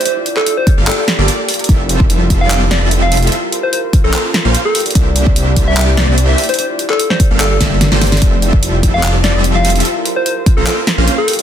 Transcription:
<<
  \new Staff \with { instrumentName = "Soft synth lead" } { \time 4/4 \key f \major \tempo 4 = 147 c''16 r8 a'8 c''8 r16 a'16 a'16 r4. | r4. r16 f''8 r16 d''16 d''16 r16 f''8 r16 | r8. c''16 c''16 r8 a'16 a'16 r4 a'16 r8 | r4. r16 e''8 r16 d''16 d''16 r16 e''16 r16 c''16 |
c''16 r8 a'8 c''8 r16 a'16 a'16 r4. | r4. r16 f''8 r16 d''16 d''16 r16 f''8 r16 | r8. c''16 c''16 r8 a'16 a'16 r4 a'16 r8 | }
  \new Staff \with { instrumentName = "Harp" } { \time 4/4 \key f \major d'16 f'16 g'16 d'16 f'16 g'16 d'16 f'16 g'16 d'16 f'16 bes'16 g'16 a'16 a'16 bes'16 | e'16 f'16 g'16 e'16 f'16 g'16 e'16 f'16 g'16 e'16 f'16 g'16 e'16 f'16 g'16 e'16 | f'16 bes'16 c''16 f'16 bes'16 c''16 f'16 bes'16 c''16 f'16 bes'16 c''16 f'16 bes'16 g'16 d'16 | d'16 e'16 g'16 r16 e'16 g'16 d'16 e'16 g'16 d'16 e'16 g'16 d'16 e'16 g'16 d'16 |
d'16 f'16 g'16 d'16 f'16 g'16 d'16 f'16 g'16 d'16 bes'16 g'16 bes'16 d''16 d'16 g'16 | e'16 f'16 g'16 r16 f'16 g'16 e'16 f'16 g'16 e'16 f'16 g'16 e'16 f'16 g'16 e'16 | f'16 bes'16 c''16 f'16 bes'16 c''16 f'16 bes'16 c''16 f'16 bes'16 c''16 f'16 bes'16 g'16 d'16 | }
  \new Staff \with { instrumentName = "Supersaw synth" } { \time 4/4 \key f \major r4. r16 <bes f' g' a' f''>16 r8. <bes f' g' a' d''>16 r4 | <g c' f' a' e''>4.~ <g c' f' a' e''>16 <g c' f' a' d''>4 <g c' f' a' e''>4~ <g c' f' a' e''>16 | r4. r16 <bes des' f' c'' bes''>16 r8. <bes des' f' c'' f''>16 r4 | <bes d' g' c'' e''>4.~ <bes d' g' c'' e''>16 <bes d' g' c'' d''>4 <bes d' g' c'' e''>8. r8 |
r4. r16 <bes f' g' a' f''>16 r8 <bes f' g' a' e''>16 r8 <bes f' g' a' c''>16 r8 | <g c' f' a' e''>4.~ <g c' f' a' e''>16 <g c' f' a' d''>4 <g c' f' a' e''>4~ <g c' f' a' e''>16 | r4. r16 <bes des' f' c'' bes''>16 r8. <bes des' f' c'' f''>16 r4 | }
  \new Staff \with { instrumentName = "Detuned saw bass" } { \clef bass \time 4/4 \key f \major r4. r16 g,,16 r8. g,,16 r4 | f,,4.~ f,,16 f,,4 f,,4~ f,,16 | r4. r16 bes,,16 r8. bes,,16 r4 | c,4.~ c,16 c,4 c,8. r8 |
r4. r16 g,,8. g,,8. g,,8. | f,,4.~ f,,16 f,,4 f,,4~ f,,16 | r4. r16 bes,,16 r8. bes,,16 r4 | }
  \new DrumStaff \with { instrumentName = "Drums" } \drummode { \time 4/4 hh8 hh16 hc16 hh8 <hh bd>8 <hc hh>8 <hh sn>8 hh8 hho32 hh32 hh32 hh32 | <hh bd>8 hh16 bd16 hh8 <hh bd>8 <hc hh>8 <hh sn>8 hh8 hho32 hh32 hh32 hh32 | hh8 hh8 hh8 <hh bd>8 <hc hh>8 <hh sn>8 hh8 hho32 hh32 hh32 hh32 | <hh bd>8 hh16 bd16 hh8 <hh bd>8 <hc hh>8 <hh sn>8 hh8 hho32 hh32 hh32 hh32 |
hh8 hh16 hc16 hh16 sn16 <hh bd>8 <hc hh>8 <hh bd sn>8 <hh sn>16 sn16 <hho sn>32 hh32 <hh sn>32 hh32 | <hh bd>8 hh16 bd16 hh8 <hh bd>8 <hc hh>8 <hh sn>8 hh8 hho32 hh32 hh32 hh32 | hh8 hh8 hh8 <hh bd>8 <hc hh>8 <hh sn>8 hh8 hho32 hh32 hh16 | }
>>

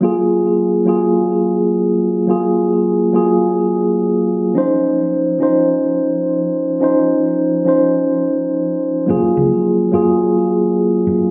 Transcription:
<<
  \new Staff \with { instrumentName = "Tine electric piano" } { \time 4/4 \key ges \lydian \tempo 4 = 106 <ges bes f' aes'>4. <ges bes f' aes'>2~ <ges bes f' aes'>8 | <ges bes f' aes'>4. <ges bes f' aes'>2~ <ges bes f' aes'>8 | <f des' ees' c''>4. <f des' ees' c''>2~ <f des' ees' c''>8 | <f des' ees' c''>4. <f des' ees' c''>2~ <f des' ees' c''>8 |
<ges bes f' aes'>4. <ges bes f' aes'>2~ <ges bes f' aes'>8 | }
  \new Staff \with { instrumentName = "Fingered electric bass" } { \clef bass \time 4/4 \key ges \lydian r1 | r1 | r1 | r1 |
ges,,8 des,8 r8 ges,8 r4. ges,8 | }
>>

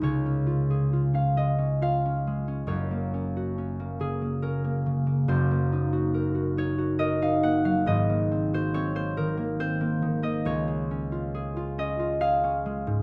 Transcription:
\new Staff \with { instrumentName = "Harp" } { \time 3/4 \key des \major \tempo 4 = 69 << { des''4~ des''16 f''16 ees''8 f''4 | des''4. aes'8 bes'4 | c''4. des''8 ees''16 f''16 ges''16 f''16 | ees''8. c''16 des''16 c''16 bes'8 c''8. ees''16 |
des''4. ees''8 f''4 | } \\ { <des, des aes aes'>16 des'16 f'16 aes'16 f'16 des'16 aes16 des'16 f'16 des'16 aes16 des'16 | <ges,, ges,>16 bes16 des'16 ges'16 des'16 bes16 des16 bes16 des'16 bes16 des16 bes16 | <ges,, ges,>16 bes16 ees'16 ges'16 bes'16 ges'16 ees'16 ges'16 bes'16 ees'16 bes16 ges16 | <aes,, aes,>16 bes16 c'16 ges'16 c'16 bes16 ees16 bes16 c'16 bes16 ees16 bes16 |
des,16 aes16 des'16 f'16 aes'16 f'16 des'16 f'16 aes'16 des'16 aes16 aes,16 | } >> }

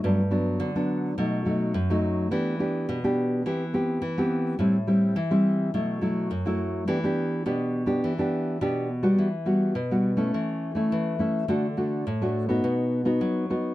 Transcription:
\new Staff \with { instrumentName = "Nylon-string guitar" } { \time 4/4 \key e \minor \tempo 4 = 105 << { <fis b d'>16 r16 <fis b d'>8. <fis b d'>8. <fis a dis'>8 <fis a dis'>8 r16 <fis a dis'>8. | <b d' g'>8 <b d' g'>8. <b d' g'>8. <b c' g'>16 r16 <b c' g'>8 r16 <b c' g'>8. | <g c' e'>16 r16 <g c' e'>8 r16 <g c' e'>8. <fis a e'>8 <fis a e'>8 r16 <fis a e'>8. | <b d' g'>16 <b d' g'>8. <b d' g'>8. <b d' g'>8 <b d' g'>8. <b d' g'>8 r16 <g b fis'>16~ |
<g b fis'>16 r16 <g b fis'>8 r16 <g b fis'>8 <a cis' e'>4 <a cis' e'>8. <a cis' e'>8 | <a d' fis'>16 r16 <a d' fis'>8 r16 <a d' fis'>8 <b dis' fis'>4 <b dis' fis'>8. <b dis' fis'>8 | } \\ { g,4 d4 b,4 fis,4 | e4 b,4 e4 e4 | a,4 e4 b,4 fis,4 | e4 b,4 e4 b,4 |
e4 b,4 e4 e4 | d4 a,4 b,4 fis4 | } >> }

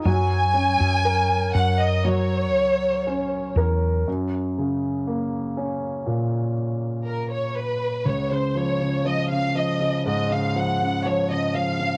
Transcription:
<<
  \new Staff \with { instrumentName = "Violin section" } { \time 4/4 \key ges \major \tempo 4 = 60 aes''4. ges''16 ees''16 des''4. r8 | r2. bes'16 des''16 ces''8 | \key des \major des''16 c''16 des''8 ees''16 f''16 ees''8 ees''16 f''16 ges''8 des''16 ees''16 f''8 | }
  \new Staff \with { instrumentName = "Grand piano" } { \clef bass \time 4/4 \key ges \major ges8 des'8 bes'4 ges4 des'8 bes'8 | ges,8 des8 bes8 des'8 bes,2 | \key des \major des,16 des16 f16 des16 f16 des16 f16 des16 aes,16 des16 f16 des16 f16 des16 f16 des16 | }
  \new Staff \with { instrumentName = "Fretless electric bass" } { \clef bass \time 4/4 \key ges \major ges,8. ges,8. ges,4 des,4 fes,8 | r1 | \key des \major r1 | }
>>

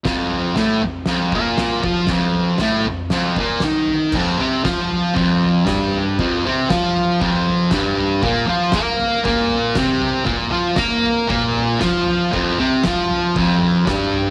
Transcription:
<<
  \new Staff \with { instrumentName = "Distorted electric guitar" } { \clef bass \time 4/4 \key f \major \tempo 4 = 117 <f, f>4 <a, a>8 f,8 <f, f>8 <bes, bes>4 <f f'>8 | <f, f>4 <a, a>8 f,8 <f, f>8 <bes, bes>8 <ees ees'>4 | <f, f>8 <c c'>8 <f f'>4 <f, f>4 <g, g>4 | <f, f>8 <c c'>8 <f f'>4 <f, f>4 <g, g>4 |
<bes, bes>8 <f f'>8 <bes bes'>4 <bes, bes>4 <c c'>4 | <bes, bes>8 <f f'>8 <bes bes'>4 <bes, bes>4 <f f'>4 | <f, f>8 <c c'>8 <f f'>4 <f, f>4 <g, g>4 | }
  \new DrumStaff \with { instrumentName = "Drums" } \drummode { \time 4/4 <bd sn tomfh>8 tomfh8 <sn tomfh>8 tomfh8 <sn tomfh>8 <bd tomfh>8 <sn tomfh>8 <bd tomfh>8 | <bd sn tomfh>8 tomfh8 <sn tomfh>8 tomfh8 <sn tomfh>8 <bd tomfh>8 <sn tomfh>8 tomfh8 | <cymc bd tomfh>8 tomfh8 <bd sn tomfh>8 tomfh8 <bd tomfh>8 tomfh8 <bd sn tomfh>8 tomfh8 | <bd tomfh>8 tomfh8 <bd sn tomfh>8 tomfh8 <bd tomfh>8 tomfh8 <bd sn tomfh>8 tomfh8 |
<bd tomfh>8 tomfh8 <bd sn tomfh>8 tomfh8 <bd tomfh>8 tomfh8 <bd sn tomfh>8 tomfh8 | <bd tomfh>8 tomfh8 <bd sn tomfh>8 tomfh8 <bd tomfh>8 tomfh8 <bd sn tomfh>8 tomfh8 | <bd tomfh>8 tomfh8 <bd sn tomfh>8 tomfh8 <bd tomfh>8 tomfh8 <bd sn tomfh>8 tomfh8 | }
>>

